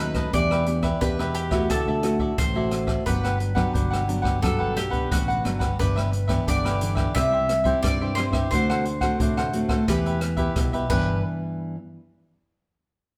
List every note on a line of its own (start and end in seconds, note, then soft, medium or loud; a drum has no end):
0.00 0.23 D#2 loud
0.00 0.30 F#2 medium
0.00 0.28 F#3 medium
0.00 0.28 A3 medium
0.00 0.29 D#4 medium
0.00 0.16 A4 medium
0.00 0.15 B4 medium
0.00 0.30 B4 medium
0.00 0.14 D#5 medium
0.14 0.32 A4 medium
0.14 0.32 B4 medium
0.14 0.31 D#5 medium
0.14 kick medium
0.14 cross-stick medium
0.14 closed hi-hat soft
0.33 0.91 E2 loud
0.33 0.98 E3 medium
0.33 0.62 B3 medium
0.33 0.49 D4 soft
0.33 0.62 D4 medium
0.33 0.49 G4 medium
0.33 0.63 G4 medium
0.33 0.50 B4 soft
0.33 1.01 D5 medium
0.33 0.50 E5 medium
0.33 kick medium
0.33 closed hi-hat medium
0.51 0.67 G4 medium
0.51 0.67 B4 medium
0.51 0.67 E5 medium
0.51 cross-stick medium
0.66 0.88 B3 medium
0.66 0.88 D4 medium
0.66 0.88 G4 medium
0.66 muted cavaquinho stroke soft
0.66 closed hi-hat soft
0.83 1.00 G4 medium
0.83 1.00 B4 medium
0.83 0.99 E5 medium
0.83 kick medium
0.83 cross-stick medium
0.83 closed hi-hat soft
1.01 1.70 E2 medium
1.01 1.66 B2 medium
1.01 1.33 B3 medium
1.01 1.34 D4 medium
1.01 1.17 D4 soft
1.01 1.17 G4 soft
1.01 1.34 G4 medium
1.01 1.37 B4 medium
1.01 1.18 B4 medium
1.01 1.18 E5 medium
1.01 kick medium
1.01 closed hi-hat medium
1.19 1.52 G4 medium
1.19 1.51 B4 medium
1.19 1.50 E5 medium
1.19 cross-stick medium
1.35 1.70 G4 medium
1.35 closed hi-hat medium
1.51 1.98 A3 medium
1.51 1.98 E4 medium
1.51 1.98 F#4 medium
1.51 1.69 G4 medium
1.51 1.68 B4 medium
1.51 1.68 E5 medium
1.51 kick medium
1.51 cross-stick medium
1.70 1.84 D2 loud
1.70 2.35 D3 medium
1.70 1.86 F#4 soft
1.70 2.41 A4 medium
1.70 1.86 A4 soft
1.70 1.86 D5 medium
1.70 1.87 E5 medium
1.70 kick medium
1.70 cross-stick medium
1.70 closed hi-hat medium
1.88 2.31 D2 medium
1.88 2.03 A4 medium
1.88 2.03 D5 medium
1.88 2.03 E5 medium
2.03 2.36 A3 medium
2.03 2.36 E4 medium
2.03 2.36 F#4 medium
2.03 muted cavaquinho stroke soft
2.03 cross-stick medium
2.03 closed hi-hat soft
2.19 2.54 A4 medium
2.19 2.54 D5 medium
2.19 2.53 E5 medium
2.19 kick medium
2.38 2.96 A1 medium
2.38 3.03 A2 medium
2.38 3.03 C5 medium
2.38 kick medium
2.38 cross-stick medium
2.38 closed hi-hat medium
2.54 3.03 A3 medium
2.54 3.04 E4 medium
2.54 3.04 F#4 medium
2.54 2.87 A4 medium
2.54 2.87 D5 medium
2.54 2.86 E5 medium
2.71 cross-stick medium
2.71 closed hi-hat soft
2.87 3.05 A4 medium
2.87 3.04 D5 medium
2.87 3.04 E5 medium
2.87 kick medium
2.87 cross-stick medium
3.06 3.65 G1 medium
3.06 3.72 G2 medium
3.06 3.53 F#3 medium
3.06 3.53 B3 medium
3.06 3.22 D4 medium
3.06 3.53 D4 medium
3.06 3.22 G4 medium
3.06 4.42 B4 medium
3.06 3.23 B4 soft
3.06 3.22 F#5 medium
3.06 kick medium
3.06 closed hi-hat medium
3.24 3.38 G4 medium
3.24 3.39 B4 medium
3.24 3.39 F#5 medium
3.24 cross-stick medium
3.24 closed hi-hat soft
3.39 muted cavaquinho stroke soft
3.39 closed hi-hat soft
3.55 4.02 F#3 medium
3.55 4.02 B3 medium
3.55 4.03 D4 medium
3.55 3.72 G4 medium
3.55 3.72 B4 medium
3.55 3.72 F#5 medium
3.55 kick medium
3.55 cross-stick medium
3.73 4.45 G1 medium
3.73 4.39 D3 medium
3.73 3.90 D4 soft
3.73 3.90 G4 soft
3.73 3.90 B4 medium
3.73 3.89 F#5 medium
3.73 kick medium
3.73 closed hi-hat medium
3.90 4.22 G4 medium
3.90 4.21 B4 medium
3.90 4.21 F#5 medium
3.90 cross-stick medium
3.90 closed hi-hat soft
4.08 4.37 F#3 medium
4.08 4.37 B3 medium
4.08 4.38 D4 medium
4.08 closed hi-hat soft
4.22 4.40 G4 medium
4.22 4.40 B4 medium
4.22 4.40 F#5 medium
4.22 kick medium
4.22 cross-stick medium
4.41 5.07 G2 medium
4.41 4.58 G2 loud
4.41 4.88 F#3 medium
4.41 4.89 B3 medium
4.41 4.58 D4 soft
4.41 4.89 D4 medium
4.41 4.58 G4 soft
4.41 4.78 A4 medium
4.41 4.58 B4 soft
4.41 4.57 F#5 soft
4.41 kick medium
4.41 cross-stick medium
4.41 closed hi-hat medium
4.59 4.75 G1 medium
4.59 4.74 G4 soft
4.59 4.74 B4 medium
4.59 4.75 F#5 medium
4.75 5.07 B1 medium
4.75 5.11 G4 medium
4.75 muted cavaquinho stroke soft
4.75 cross-stick medium
4.75 closed hi-hat soft
4.90 5.39 B3 medium
4.90 5.39 D4 medium
4.90 5.26 G4 medium
4.90 5.25 B4 medium
4.90 5.25 F#5 medium
4.90 kick medium
4.90 closed hi-hat soft
5.11 5.42 A1 medium
5.11 5.76 D3 medium
5.11 5.76 F#4 medium
5.11 kick medium
5.11 cross-stick medium
5.11 closed hi-hat medium
5.28 5.59 B4 medium
5.28 5.58 F#5 medium
5.28 closed hi-hat soft
5.44 5.75 G1 medium
5.44 5.65 F#3 soft
5.44 5.65 B3 medium
5.44 5.65 D4 medium
5.44 cross-stick medium
5.44 closed hi-hat soft
5.59 5.77 G4 medium
5.59 5.77 B4 medium
5.59 5.76 F#5 medium
5.59 kick medium
5.59 cross-stick medium
5.59 closed hi-hat soft
5.79 6.38 G1 medium
5.79 6.45 G2 medium
5.79 6.12 E3 medium
5.79 6.12 B3 medium
5.79 5.95 D4 medium
5.79 6.12 D4 medium
5.79 5.95 G4 soft
5.79 6.48 B4 medium
5.79 5.95 B4 medium
5.79 5.95 E5 medium
5.79 kick medium
5.79 closed hi-hat medium
5.96 6.11 G4 soft
5.96 6.11 B4 medium
5.96 6.11 E5 medium
5.96 cross-stick medium
6.11 muted cavaquinho stroke soft
6.11 closed hi-hat soft
6.28 6.76 E3 medium
6.28 6.76 B3 medium
6.28 6.76 D4 medium
6.28 6.46 G4 medium
6.28 6.45 B4 medium
6.28 6.45 E5 medium
6.28 kick medium
6.28 cross-stick medium
6.28 closed hi-hat soft
6.47 7.05 G1 loud
6.47 7.12 D3 medium
6.47 6.63 D4 soft
6.47 6.63 G4 soft
6.47 6.64 B4 soft
6.47 7.14 D5 medium
6.47 6.64 E5 medium
6.47 kick medium
6.47 closed hi-hat medium
6.65 6.96 G4 medium
6.65 6.95 B4 medium
6.65 6.94 E5 medium
6.65 cross-stick medium
6.65 closed hi-hat soft
6.81 7.10 E3 medium
6.81 7.10 B3 medium
6.81 7.10 D4 medium
6.81 closed hi-hat medium
6.95 7.14 G4 medium
6.95 7.13 B4 medium
6.95 7.13 E5 medium
6.95 kick medium
6.95 cross-stick medium
7.14 7.74 C2 loud
7.14 7.81 C3 medium
7.14 7.48 G3 medium
7.14 7.48 C4 medium
7.14 7.31 E4 soft
7.14 7.48 E4 medium
7.14 7.31 G4 medium
7.14 7.32 C5 soft
7.14 7.82 E5 loud
7.14 7.31 E5 medium
7.14 kick medium
7.14 cross-stick medium
7.14 closed hi-hat medium
7.32 7.47 G4 medium
7.32 7.48 C5 medium
7.32 7.48 E5 medium
7.48 muted cavaquinho stroke soft
7.48 cross-stick medium
7.48 closed hi-hat soft
7.64 8.12 G3 medium
7.64 8.12 C4 medium
7.64 8.12 E4 medium
7.64 7.99 G4 medium
7.64 7.99 C5 medium
7.64 7.98 E5 medium
7.64 kick medium
7.64 closed hi-hat soft
7.83 7.98 G2 medium
7.83 8.49 G2 medium
7.83 8.15 D5 medium
7.83 kick medium
7.83 cross-stick medium
7.83 closed hi-hat medium
8.01 8.30 G2 medium
8.01 8.33 G4 medium
8.01 8.32 C5 medium
8.01 8.31 E5 medium
8.15 8.47 G3 soft
8.15 8.47 C4 medium
8.15 8.25 C5 medium
8.15 cross-stick medium
8.15 closed hi-hat soft
8.19 8.47 E4 medium
8.31 8.47 G2 medium
8.31 8.50 G4 medium
8.31 8.50 C5 medium
8.31 8.49 E5 medium
8.31 kick medium
8.31 cross-stick medium
8.51 9.10 D2 medium
8.51 9.17 D3 medium
8.51 8.85 A3 medium
8.51 8.85 C4 medium
8.51 8.68 D4 soft
8.51 8.85 F#4 medium
8.51 8.68 A4 medium
8.51 9.88 C5 medium
8.51 8.68 C5 medium
8.51 8.69 F#5 medium
8.51 kick medium
8.51 closed hi-hat medium
8.70 8.85 A4 medium
8.70 8.85 C5 medium
8.70 8.85 F#5 medium
8.70 cross-stick medium
8.85 muted cavaquinho stroke soft
8.85 closed hi-hat soft
9.01 9.48 A3 medium
9.01 9.48 C4 medium
9.01 9.48 F#4 medium
9.01 9.18 A4 medium
9.01 9.18 C5 medium
9.01 9.18 F#5 medium
9.01 kick medium
9.01 cross-stick medium
9.01 closed hi-hat soft
9.20 9.78 D2 loud
9.20 9.85 A2 medium
9.20 9.36 D4 soft
9.20 9.36 A4 medium
9.20 9.36 C5 medium
9.20 9.36 F#5 medium
9.20 kick medium
9.20 closed hi-hat medium
9.37 9.69 A4 medium
9.37 9.68 C5 medium
9.37 9.67 F#5 medium
9.37 cross-stick medium
9.53 9.82 A3 medium
9.53 9.83 C4 medium
9.53 9.83 F#4 medium
9.53 closed hi-hat soft
9.69 9.86 A4 medium
9.69 9.86 C5 medium
9.69 9.86 F#5 medium
9.69 kick medium
9.69 cross-stick medium
9.88 10.46 E2 loud
9.88 10.53 E3 medium
9.88 10.20 B3 medium
9.88 10.04 E4 soft
9.88 10.20 E4 medium
9.88 10.04 G4 soft
9.88 10.21 G4 medium
9.88 10.86 B4 medium
9.88 10.04 B4 medium
9.88 10.05 E5 medium
9.88 kick medium
9.88 cross-stick medium
9.88 closed hi-hat medium
10.06 10.20 G4 medium
10.06 10.20 B4 medium
10.06 10.21 E5 medium
10.06 closed hi-hat soft
10.21 muted cavaquinho stroke soft
10.21 cross-stick medium
10.21 closed hi-hat soft
10.37 10.84 B3 medium
10.37 10.84 E4 medium
10.37 10.72 G4 medium
10.37 10.84 G4 medium
10.37 10.71 B4 medium
10.37 10.71 E5 medium
10.37 kick medium
10.37 closed hi-hat soft
10.56 10.71 B1 loud
10.56 10.90 B2 medium
10.56 kick medium
10.56 cross-stick medium
10.56 closed hi-hat medium
10.73 10.88 B1 medium
10.73 10.89 G4 medium
10.73 10.90 B4 medium
10.73 10.90 E5 medium
10.73 closed hi-hat soft
10.89 11.22 G1 loud
10.89 11.75 G2 medium
10.89 11.75 E3 medium
10.89 11.75 B3 medium
10.89 11.17 D4 medium
10.89 11.75 D4 medium
10.89 11.17 G4 medium
10.89 11.22 B4 medium
10.89 11.18 B4 medium
10.89 11.18 E5 medium
10.89 kick medium
10.89 crash medium